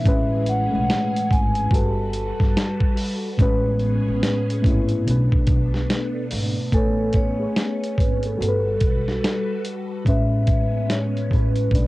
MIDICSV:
0, 0, Header, 1, 7, 480
1, 0, Start_track
1, 0, Key_signature, 3, "major"
1, 0, Tempo, 833333
1, 33, Time_signature, 4, 2, 24, 8
1, 6838, End_track
2, 0, Start_track
2, 0, Title_t, "Vibraphone"
2, 0, Program_c, 0, 11
2, 0, Note_on_c, 0, 76, 91
2, 257, Note_off_c, 0, 76, 0
2, 282, Note_on_c, 0, 78, 95
2, 760, Note_on_c, 0, 80, 100
2, 772, Note_off_c, 0, 78, 0
2, 999, Note_on_c, 0, 81, 93
2, 1004, Note_off_c, 0, 80, 0
2, 1693, Note_off_c, 0, 81, 0
2, 3881, Note_on_c, 0, 69, 101
2, 4124, Note_on_c, 0, 73, 104
2, 4125, Note_off_c, 0, 69, 0
2, 4608, Note_on_c, 0, 71, 80
2, 4613, Note_off_c, 0, 73, 0
2, 4755, Note_off_c, 0, 71, 0
2, 4756, Note_on_c, 0, 69, 75
2, 5537, Note_off_c, 0, 69, 0
2, 5809, Note_on_c, 0, 76, 105
2, 6286, Note_on_c, 0, 73, 86
2, 6296, Note_off_c, 0, 76, 0
2, 6525, Note_on_c, 0, 71, 81
2, 6527, Note_off_c, 0, 73, 0
2, 6766, Note_off_c, 0, 71, 0
2, 6768, Note_on_c, 0, 74, 78
2, 6838, Note_off_c, 0, 74, 0
2, 6838, End_track
3, 0, Start_track
3, 0, Title_t, "String machine"
3, 0, Program_c, 1, 50
3, 0, Note_on_c, 1, 52, 74
3, 35, Note_on_c, 1, 61, 91
3, 35, Note_on_c, 1, 68, 86
3, 971, Note_off_c, 1, 52, 0
3, 985, Note_off_c, 1, 61, 0
3, 985, Note_off_c, 1, 68, 0
3, 991, Note_on_c, 1, 66, 81
3, 992, Note_on_c, 1, 55, 85
3, 992, Note_on_c, 1, 69, 74
3, 993, Note_on_c, 1, 71, 85
3, 1942, Note_off_c, 1, 66, 0
3, 1943, Note_off_c, 1, 55, 0
3, 1943, Note_off_c, 1, 69, 0
3, 1944, Note_off_c, 1, 71, 0
3, 1952, Note_on_c, 1, 59, 81
3, 1952, Note_on_c, 1, 61, 99
3, 1952, Note_on_c, 1, 68, 88
3, 2903, Note_off_c, 1, 59, 0
3, 2903, Note_off_c, 1, 61, 0
3, 2903, Note_off_c, 1, 68, 0
3, 2913, Note_on_c, 1, 57, 74
3, 2913, Note_on_c, 1, 59, 70
3, 2916, Note_on_c, 1, 62, 83
3, 3864, Note_off_c, 1, 57, 0
3, 3864, Note_off_c, 1, 59, 0
3, 3865, Note_off_c, 1, 62, 0
3, 3874, Note_on_c, 1, 59, 85
3, 3875, Note_on_c, 1, 57, 71
3, 3876, Note_on_c, 1, 61, 97
3, 4824, Note_off_c, 1, 57, 0
3, 4824, Note_off_c, 1, 59, 0
3, 4825, Note_off_c, 1, 61, 0
3, 4828, Note_on_c, 1, 69, 76
3, 4830, Note_on_c, 1, 66, 74
3, 4831, Note_on_c, 1, 55, 79
3, 4831, Note_on_c, 1, 71, 86
3, 5781, Note_off_c, 1, 69, 0
3, 5782, Note_off_c, 1, 55, 0
3, 5782, Note_off_c, 1, 66, 0
3, 5782, Note_off_c, 1, 71, 0
3, 5789, Note_on_c, 1, 61, 95
3, 5792, Note_on_c, 1, 56, 83
3, 5792, Note_on_c, 1, 59, 77
3, 6741, Note_off_c, 1, 59, 0
3, 6742, Note_off_c, 1, 61, 0
3, 6743, Note_off_c, 1, 56, 0
3, 6748, Note_on_c, 1, 54, 80
3, 6748, Note_on_c, 1, 59, 67
3, 6750, Note_on_c, 1, 62, 80
3, 6838, Note_off_c, 1, 54, 0
3, 6838, Note_off_c, 1, 59, 0
3, 6838, Note_off_c, 1, 62, 0
3, 6838, End_track
4, 0, Start_track
4, 0, Title_t, "Synth keys"
4, 0, Program_c, 2, 88
4, 0, Control_c, 2, 64, 127
4, 20, Note_on_c, 2, 45, 92
4, 30, Note_on_c, 2, 56, 84
4, 40, Control_c, 2, 64, 0
4, 40, Note_on_c, 2, 61, 85
4, 47, Note_on_c, 2, 71, 113
4, 127, Control_c, 2, 64, 127
4, 309, Note_off_c, 2, 45, 0
4, 314, Note_off_c, 2, 56, 0
4, 319, Note_off_c, 2, 61, 0
4, 322, Note_off_c, 2, 71, 0
4, 405, Note_on_c, 2, 57, 69
4, 414, Note_on_c, 2, 56, 77
4, 423, Note_on_c, 2, 61, 68
4, 432, Note_on_c, 2, 71, 83
4, 982, Note_on_c, 2, 55, 80
4, 984, Note_off_c, 2, 57, 0
4, 989, Note_off_c, 2, 56, 0
4, 991, Note_on_c, 2, 66, 76
4, 993, Note_off_c, 2, 61, 0
4, 998, Note_off_c, 2, 71, 0
4, 1001, Note_on_c, 2, 69, 81
4, 1002, Control_c, 2, 64, 0
4, 1010, Note_on_c, 2, 71, 80
4, 1108, Control_c, 2, 64, 127
4, 1768, Note_off_c, 2, 55, 0
4, 1772, Note_off_c, 2, 66, 0
4, 1777, Note_off_c, 2, 69, 0
4, 1782, Note_off_c, 2, 71, 0
4, 1943, Note_on_c, 2, 45, 96
4, 1953, Note_on_c, 2, 56, 85
4, 1960, Control_c, 2, 64, 0
4, 1961, Note_on_c, 2, 61, 91
4, 1970, Note_on_c, 2, 71, 114
4, 2044, Control_c, 2, 64, 127
4, 2513, Note_off_c, 2, 45, 0
4, 2517, Note_off_c, 2, 56, 0
4, 2522, Note_off_c, 2, 61, 0
4, 2526, Note_off_c, 2, 71, 0
4, 2659, Note_on_c, 2, 57, 79
4, 2667, Note_on_c, 2, 56, 68
4, 2678, Note_on_c, 2, 61, 73
4, 2686, Note_on_c, 2, 64, 87
4, 2906, Note_off_c, 2, 57, 0
4, 2910, Note_off_c, 2, 56, 0
4, 2912, Note_on_c, 2, 47, 79
4, 2915, Note_off_c, 2, 61, 0
4, 2920, Note_off_c, 2, 64, 0
4, 2921, Control_c, 2, 64, 0
4, 2921, Note_on_c, 2, 57, 60
4, 2931, Note_on_c, 2, 61, 53
4, 2940, Note_on_c, 2, 71, 84
4, 2968, Note_on_c, 2, 62, 68
4, 2969, Note_off_c, 2, 61, 0
4, 3033, Control_c, 2, 64, 127
4, 3693, Note_off_c, 2, 47, 0
4, 3697, Note_off_c, 2, 57, 0
4, 3707, Note_off_c, 2, 71, 0
4, 3721, Note_off_c, 2, 62, 0
4, 3874, Note_on_c, 2, 57, 100
4, 3881, Control_c, 2, 64, 0
4, 3884, Note_on_c, 2, 80, 84
4, 3892, Note_on_c, 2, 71, 87
4, 3900, Note_on_c, 2, 73, 96
4, 3984, Control_c, 2, 64, 127
4, 4156, Note_off_c, 2, 57, 0
4, 4161, Note_off_c, 2, 80, 0
4, 4165, Note_off_c, 2, 71, 0
4, 4169, Note_off_c, 2, 73, 0
4, 4252, Note_on_c, 2, 57, 70
4, 4260, Note_on_c, 2, 68, 61
4, 4268, Note_on_c, 2, 71, 61
4, 4278, Note_on_c, 2, 73, 70
4, 4821, Note_on_c, 2, 55, 71
4, 4828, Note_off_c, 2, 57, 0
4, 4829, Note_on_c, 2, 66, 71
4, 4832, Note_off_c, 2, 68, 0
4, 4836, Note_off_c, 2, 71, 0
4, 4839, Note_on_c, 2, 69, 67
4, 4840, Control_c, 2, 64, 0
4, 4841, Note_off_c, 2, 73, 0
4, 4847, Note_on_c, 2, 70, 64
4, 4885, Note_on_c, 2, 71, 84
4, 4887, Note_off_c, 2, 70, 0
4, 4945, Control_c, 2, 64, 127
4, 5607, Note_off_c, 2, 55, 0
4, 5611, Note_off_c, 2, 66, 0
4, 5616, Note_off_c, 2, 69, 0
4, 5639, Note_off_c, 2, 71, 0
4, 5786, Note_on_c, 2, 45, 99
4, 5795, Note_on_c, 2, 56, 86
4, 5800, Control_c, 2, 64, 0
4, 5805, Note_on_c, 2, 61, 85
4, 5812, Note_on_c, 2, 71, 101
4, 5888, Control_c, 2, 64, 127
4, 6354, Note_off_c, 2, 45, 0
4, 6358, Note_off_c, 2, 56, 0
4, 6363, Note_off_c, 2, 61, 0
4, 6367, Note_off_c, 2, 71, 0
4, 6508, Note_on_c, 2, 45, 86
4, 6517, Note_on_c, 2, 56, 75
4, 6526, Note_on_c, 2, 61, 70
4, 6534, Note_on_c, 2, 71, 88
4, 6741, Note_on_c, 2, 47, 79
4, 6751, Note_off_c, 2, 45, 0
4, 6751, Note_on_c, 2, 57, 70
4, 6755, Note_off_c, 2, 56, 0
4, 6759, Note_off_c, 2, 61, 0
4, 6759, Note_on_c, 2, 62, 66
4, 6760, Control_c, 2, 64, 0
4, 6762, Note_off_c, 2, 71, 0
4, 6769, Note_on_c, 2, 71, 83
4, 6838, Note_off_c, 2, 47, 0
4, 6838, Note_off_c, 2, 57, 0
4, 6838, Note_off_c, 2, 62, 0
4, 6838, Note_off_c, 2, 71, 0
4, 6838, End_track
5, 0, Start_track
5, 0, Title_t, "Upright bass"
5, 0, Program_c, 3, 32
5, 35, Note_on_c, 3, 33, 105
5, 369, Note_off_c, 3, 33, 0
5, 429, Note_on_c, 3, 35, 82
5, 504, Note_off_c, 3, 35, 0
5, 757, Note_on_c, 3, 32, 93
5, 961, Note_off_c, 3, 32, 0
5, 987, Note_on_c, 3, 31, 95
5, 1324, Note_off_c, 3, 31, 0
5, 1384, Note_on_c, 3, 31, 84
5, 1461, Note_off_c, 3, 31, 0
5, 1955, Note_on_c, 3, 33, 107
5, 2289, Note_off_c, 3, 33, 0
5, 2349, Note_on_c, 3, 33, 78
5, 2424, Note_off_c, 3, 33, 0
5, 2676, Note_on_c, 3, 32, 92
5, 2881, Note_off_c, 3, 32, 0
5, 2921, Note_on_c, 3, 35, 94
5, 3046, Note_off_c, 3, 35, 0
5, 3157, Note_on_c, 3, 35, 93
5, 3361, Note_off_c, 3, 35, 0
5, 3643, Note_on_c, 3, 32, 92
5, 3767, Note_off_c, 3, 32, 0
5, 3876, Note_on_c, 3, 33, 94
5, 4287, Note_off_c, 3, 33, 0
5, 4600, Note_on_c, 3, 32, 87
5, 4803, Note_off_c, 3, 32, 0
5, 4841, Note_on_c, 3, 31, 95
5, 5044, Note_off_c, 3, 31, 0
5, 5079, Note_on_c, 3, 35, 78
5, 5282, Note_off_c, 3, 35, 0
5, 5797, Note_on_c, 3, 33, 94
5, 6207, Note_off_c, 3, 33, 0
5, 6518, Note_on_c, 3, 33, 87
5, 6722, Note_off_c, 3, 33, 0
5, 6749, Note_on_c, 3, 35, 90
5, 6838, Note_off_c, 3, 35, 0
5, 6838, End_track
6, 0, Start_track
6, 0, Title_t, "Muted upright bass strokes"
6, 3069, Note_on_c, 9, 29, 47
6, 3127, Note_off_c, 9, 29, 0
6, 6838, End_track
7, 0, Start_track
7, 0, Title_t, "Drums"
7, 32, Note_on_c, 9, 36, 121
7, 35, Note_on_c, 9, 42, 69
7, 90, Note_off_c, 9, 36, 0
7, 92, Note_off_c, 9, 42, 0
7, 266, Note_on_c, 9, 42, 49
7, 324, Note_off_c, 9, 42, 0
7, 517, Note_on_c, 9, 38, 123
7, 523, Note_on_c, 9, 42, 89
7, 575, Note_off_c, 9, 38, 0
7, 580, Note_off_c, 9, 42, 0
7, 670, Note_on_c, 9, 42, 48
7, 728, Note_off_c, 9, 42, 0
7, 753, Note_on_c, 9, 36, 100
7, 764, Note_on_c, 9, 42, 61
7, 810, Note_off_c, 9, 36, 0
7, 822, Note_off_c, 9, 42, 0
7, 894, Note_on_c, 9, 42, 46
7, 951, Note_off_c, 9, 42, 0
7, 984, Note_on_c, 9, 36, 98
7, 1003, Note_on_c, 9, 42, 85
7, 1041, Note_off_c, 9, 36, 0
7, 1061, Note_off_c, 9, 42, 0
7, 1229, Note_on_c, 9, 42, 64
7, 1286, Note_off_c, 9, 42, 0
7, 1382, Note_on_c, 9, 36, 91
7, 1386, Note_on_c, 9, 38, 39
7, 1439, Note_off_c, 9, 36, 0
7, 1444, Note_off_c, 9, 38, 0
7, 1480, Note_on_c, 9, 38, 109
7, 1482, Note_on_c, 9, 42, 80
7, 1537, Note_off_c, 9, 38, 0
7, 1539, Note_off_c, 9, 42, 0
7, 1615, Note_on_c, 9, 36, 88
7, 1672, Note_off_c, 9, 36, 0
7, 1711, Note_on_c, 9, 46, 48
7, 1769, Note_off_c, 9, 46, 0
7, 1952, Note_on_c, 9, 36, 110
7, 1954, Note_on_c, 9, 42, 65
7, 2009, Note_off_c, 9, 36, 0
7, 2012, Note_off_c, 9, 42, 0
7, 2185, Note_on_c, 9, 42, 50
7, 2242, Note_off_c, 9, 42, 0
7, 2436, Note_on_c, 9, 38, 117
7, 2441, Note_on_c, 9, 42, 81
7, 2493, Note_off_c, 9, 38, 0
7, 2499, Note_off_c, 9, 42, 0
7, 2592, Note_on_c, 9, 42, 47
7, 2649, Note_off_c, 9, 42, 0
7, 2673, Note_on_c, 9, 36, 90
7, 2683, Note_on_c, 9, 42, 56
7, 2730, Note_off_c, 9, 36, 0
7, 2741, Note_off_c, 9, 42, 0
7, 2814, Note_on_c, 9, 42, 44
7, 2871, Note_off_c, 9, 42, 0
7, 2924, Note_on_c, 9, 42, 78
7, 2981, Note_off_c, 9, 42, 0
7, 3066, Note_on_c, 9, 36, 85
7, 3123, Note_off_c, 9, 36, 0
7, 3149, Note_on_c, 9, 42, 70
7, 3153, Note_on_c, 9, 36, 94
7, 3207, Note_off_c, 9, 42, 0
7, 3211, Note_off_c, 9, 36, 0
7, 3307, Note_on_c, 9, 38, 37
7, 3365, Note_off_c, 9, 38, 0
7, 3399, Note_on_c, 9, 38, 121
7, 3400, Note_on_c, 9, 42, 74
7, 3456, Note_off_c, 9, 38, 0
7, 3458, Note_off_c, 9, 42, 0
7, 3634, Note_on_c, 9, 46, 50
7, 3691, Note_off_c, 9, 46, 0
7, 3873, Note_on_c, 9, 36, 112
7, 3876, Note_on_c, 9, 42, 65
7, 3931, Note_off_c, 9, 36, 0
7, 3934, Note_off_c, 9, 42, 0
7, 4106, Note_on_c, 9, 42, 50
7, 4114, Note_on_c, 9, 36, 76
7, 4164, Note_off_c, 9, 42, 0
7, 4171, Note_off_c, 9, 36, 0
7, 4357, Note_on_c, 9, 38, 127
7, 4363, Note_on_c, 9, 42, 81
7, 4415, Note_off_c, 9, 38, 0
7, 4420, Note_off_c, 9, 42, 0
7, 4513, Note_on_c, 9, 42, 43
7, 4571, Note_off_c, 9, 42, 0
7, 4596, Note_on_c, 9, 36, 91
7, 4609, Note_on_c, 9, 42, 61
7, 4653, Note_off_c, 9, 36, 0
7, 4667, Note_off_c, 9, 42, 0
7, 4739, Note_on_c, 9, 42, 44
7, 4796, Note_off_c, 9, 42, 0
7, 4850, Note_on_c, 9, 42, 76
7, 4908, Note_off_c, 9, 42, 0
7, 5071, Note_on_c, 9, 42, 62
7, 5075, Note_on_c, 9, 36, 90
7, 5129, Note_off_c, 9, 42, 0
7, 5132, Note_off_c, 9, 36, 0
7, 5230, Note_on_c, 9, 38, 36
7, 5288, Note_off_c, 9, 38, 0
7, 5324, Note_on_c, 9, 38, 114
7, 5326, Note_on_c, 9, 42, 76
7, 5381, Note_off_c, 9, 38, 0
7, 5383, Note_off_c, 9, 42, 0
7, 5556, Note_on_c, 9, 42, 65
7, 5614, Note_off_c, 9, 42, 0
7, 5794, Note_on_c, 9, 36, 103
7, 5798, Note_on_c, 9, 42, 63
7, 5851, Note_off_c, 9, 36, 0
7, 5856, Note_off_c, 9, 42, 0
7, 6031, Note_on_c, 9, 42, 54
7, 6034, Note_on_c, 9, 36, 84
7, 6089, Note_off_c, 9, 42, 0
7, 6092, Note_off_c, 9, 36, 0
7, 6278, Note_on_c, 9, 38, 108
7, 6284, Note_on_c, 9, 42, 83
7, 6336, Note_off_c, 9, 38, 0
7, 6342, Note_off_c, 9, 42, 0
7, 6434, Note_on_c, 9, 42, 48
7, 6491, Note_off_c, 9, 42, 0
7, 6515, Note_on_c, 9, 36, 89
7, 6527, Note_on_c, 9, 42, 59
7, 6572, Note_off_c, 9, 36, 0
7, 6585, Note_off_c, 9, 42, 0
7, 6656, Note_on_c, 9, 42, 41
7, 6714, Note_off_c, 9, 42, 0
7, 6746, Note_on_c, 9, 36, 86
7, 6767, Note_on_c, 9, 42, 74
7, 6804, Note_off_c, 9, 36, 0
7, 6825, Note_off_c, 9, 42, 0
7, 6838, End_track
0, 0, End_of_file